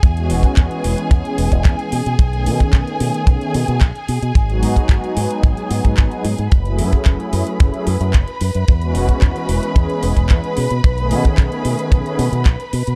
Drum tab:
HH |xxoxxxoxxxoxxxox|xxoxxxoxxxoxxxox|xxoxxxoxxxoxxxox|xxoxxxoxxxoxxxox|
CP |----x-------x---|----x-------x---|----x-------x---|----x-------x---|
BD |o--oo---o--oo---|o--oo---o---o---|o--oo---o--oo---|o--oo---o---o---|

HH |xxoxxxoxxxoxxxox|xxoxxxoxxxoxxxox|
CP |----x-------x---|----x-------x---|
BD |o--oo---o--oo---|o--oo---o---o---|